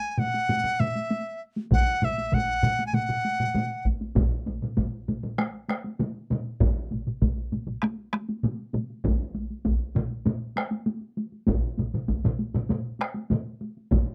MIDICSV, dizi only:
0, 0, Header, 1, 2, 480
1, 0, Start_track
1, 0, Tempo, 610376
1, 1349, Time_signature, 4, 2, 24, 8
1, 11125, End_track
2, 0, Start_track
2, 0, Title_t, "Dizi"
2, 0, Program_c, 0, 73
2, 0, Note_on_c, 0, 80, 78
2, 90, Note_off_c, 0, 80, 0
2, 90, Note_on_c, 0, 80, 52
2, 148, Note_on_c, 0, 78, 75
2, 160, Note_off_c, 0, 80, 0
2, 628, Note_on_c, 0, 76, 72
2, 640, Note_off_c, 0, 78, 0
2, 1109, Note_off_c, 0, 76, 0
2, 1363, Note_on_c, 0, 78, 88
2, 1608, Note_on_c, 0, 76, 74
2, 1620, Note_off_c, 0, 78, 0
2, 1842, Note_on_c, 0, 78, 82
2, 1853, Note_off_c, 0, 76, 0
2, 2250, Note_off_c, 0, 78, 0
2, 2255, Note_on_c, 0, 80, 54
2, 2314, Note_on_c, 0, 78, 77
2, 2326, Note_off_c, 0, 80, 0
2, 3035, Note_off_c, 0, 78, 0
2, 11125, End_track
0, 0, End_of_file